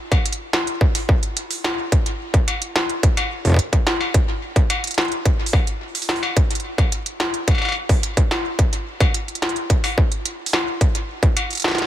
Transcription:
0.12 kick, closed hi-hat, struck metal
0.26 closed hi-hat
0.33 closed hi-hat
0.53 snare
0.67 closed hi-hat
0.81 kick
0.95 closed hi-hat, open hi-hat
1.09 kick
1.23 closed hi-hat
1.37 closed hi-hat
1.51 open hi-hat
1.64 snare, struck metal
1.92 kick, closed hi-hat
2.06 closed hi-hat
2.34 kick, closed hi-hat
2.48 closed hi-hat, struck metal
2.62 closed hi-hat
2.76 snare
2.89 closed hi-hat
3.03 kick, closed hi-hat
3.17 closed hi-hat, struck metal
3.45 kick, open hi-hat
3.47 kick
3.50 kick
3.52 kick
3.54 kick
3.56 kick, closed hi-hat
3.73 kick, closed hi-hat
3.87 snare
4.01 struck metal
4.14 kick, closed hi-hat
4.56 kick, closed hi-hat
4.70 closed hi-hat, struck metal
4.84 closed hi-hat
4.87 closed hi-hat
4.91 closed hi-hat
4.94 snare, closed hi-hat
4.98 closed hi-hat
5.05 closed hi-hat
5.08 closed hi-hat
5.12 closed hi-hat
5.25 kick, closed hi-hat
5.46 open hi-hat
5.53 kick, struck metal
5.67 closed hi-hat
5.95 open hi-hat
6.02 open hi-hat
6.09 snare, open hi-hat
6.16 open hi-hat
6.23 struck metal
6.37 kick, closed hi-hat
6.51 closed hi-hat
6.55 closed hi-hat
6.60 closed hi-hat
6.78 kick, closed hi-hat, struck metal
6.92 closed hi-hat
7.06 closed hi-hat
7.20 snare
7.34 closed hi-hat
7.48 kick, closed hi-hat, struck metal
7.51 struck metal
7.55 struck metal
7.58 struck metal
7.62 struck metal
7.65 struck metal
7.68 struck metal
7.72 struck metal
7.89 kick, open hi-hat
8.03 closed hi-hat
8.17 kick, closed hi-hat
8.31 snare, struck metal
8.59 kick, closed hi-hat
8.73 closed hi-hat
9.00 kick, closed hi-hat, struck metal
9.14 closed hi-hat
9.28 closed hi-hat
9.35 closed hi-hat
9.42 snare, closed hi-hat
9.49 closed hi-hat
9.56 closed hi-hat
9.70 kick, closed hi-hat
9.84 open hi-hat, struck metal
9.98 kick
10.12 closed hi-hat
10.26 closed hi-hat
10.46 open hi-hat
10.53 snare, struck metal
10.81 kick, closed hi-hat
10.95 closed hi-hat
11.23 kick, closed hi-hat
11.37 closed hi-hat, struck metal
11.50 closed hi-hat
11.53 closed hi-hat
11.55 closed hi-hat
11.57 closed hi-hat
11.60 closed hi-hat
11.62 snare, closed hi-hat
11.68 snare
11.71 snare
11.75 snare
11.78 snare, closed hi-hat
11.82 snare

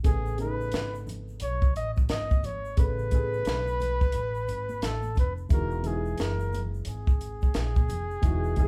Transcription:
0.03 A1 C#3 A3 B3 G#4, kick, closed hi-hat, shaker
0.26 shaker
0.37 C#3 A3 B3 D#4 B4, closed hi-hat, high conga, shaker
0.61 shaker
0.72 G#1, snare, closed hi-hat, shaker
0.95 shaker
1.07 closed hi-hat, high conga, low conga, shaker
1.28 shaker
1.40 B1 C#5, closed hi-hat, shaker
1.62 kick, shaker
1.75 A1 D#5, closed hi-hat, shaker
1.97 kick, high conga, shaker
2.09 G#1 D#5, snare, closed hi-hat, shaker
2.31 kick, high conga, shaker
2.43 C#5, closed hi-hat, low conga, shaker
2.65 shaker
2.77 A1 C#3 A3 B3 B4, kick, closed hi-hat, shaker
2.99 shaker
3.11 C#3 A3 B3 G#4, kick, closed hi-hat, high conga, shaker
3.33 shaker
3.45 B1, snare, closed hi-hat, shaker
3.67 shaker
3.80 closed hi-hat, high conga, low conga, shaker
4.01 kick, shaker
4.12 A1, closed hi-hat, shaker
4.35 shaker
4.48 G#1, closed hi-hat, shaker
4.69 high conga, shaker
4.82 A1 A4, snare, closed hi-hat, shaker
5.03 high conga, shaker
5.15 F1 B4, kick, closed hi-hat, low conga, shaker
5.37 shaker
5.49 E1 E3 G#3 D#4 F#4 A#4, kick, closed hi-hat, shaker
5.71 shaker
5.83 E3 G#3 D#4 F#4, closed hi-hat, high conga, shaker
5.87 G#4
5.93 G#4
6.06 shaker
6.18 F#1 A#4, snare, closed hi-hat, shaker
6.40 shaker
6.53 closed hi-hat, high conga, low conga, shaker
6.74 shaker
6.85 G#1, closed hi-hat, shaker
6.89 G#4
7.07 kick, shaker
7.21 closed hi-hat, shaker
7.42 muted upright bass stroke, kick, high conga, shaker
7.54 A#1, snare, closed hi-hat, shaker
7.76 kick, high conga, shaker
7.89 F1, closed hi-hat, low conga, shaker
8.11 shaker
8.22 E1 E3 G#3 D#4 F#4, kick, closed hi-hat, shaker
8.44 shaker
8.56 E3 G#3 D#4 G#4, kick, closed hi-hat, high conga, shaker

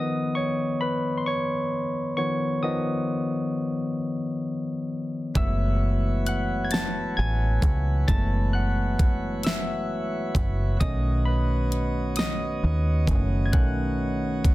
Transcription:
Already playing: D#3 F3 B3 D#5 D#6
0.35 C#5 C#6
0.81 B4 B5
1.18 C6
1.26 C#5 C#6
2.17 D#3 F3 B3 C#5 C#6
2.63 D#3 F3 B3 D#5 D#6
5.35 F#1 E3 F#3 G#3 A3 B3 E4 F#4 B4 C#5 E5 E6, kick, closed hi-hat
6.26 F#5 F#6, closed hi-hat
6.65 G#6
6.71 A5 A6, snare, closed hi-hat
7.17 A1 G#5 G#6
7.62 C#2, kick, closed hi-hat
8.08 F#1 E3 G#3 A3 B3 A5 A6, kick, closed hi-hat
8.53 F#5 F#6
8.99 kick, closed hi-hat
9.43 E5 E6, snare, closed hi-hat
10.35 F#1, kick, closed hi-hat
10.79 B1 D#3 A3 B3 C#4 F#4 D#5 D#6, kick, closed hi-hat
11.25 B4 B5
11.72 closed hi-hat
12.16 D#5 D#6, snare, closed hi-hat
12.64 D#2
13.07 F#1 D#3 A3 C#4, kick, closed hi-hat
13.46 G#6
13.53 B1 D#3 A3 C#4 F#5 F#6, kick, closed hi-hat
14.45 kick, closed hi-hat

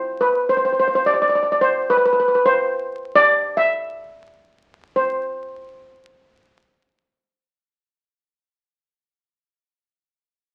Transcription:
0.21 B4
0.49 C5
0.57 C5
0.65 C5
0.73 C5
0.80 C5
0.88 C5
0.95 C5
1.06 D5
1.14 D5
1.22 D5
1.29 D5
1.35 D5
1.43 D5
1.52 D5
1.61 C5
1.90 B4
1.97 B4
2.06 B4
2.13 B4
2.20 B4
2.28 B4
2.35 B4
2.46 C5
3.15 D5
3.57 E5
4.96 C5

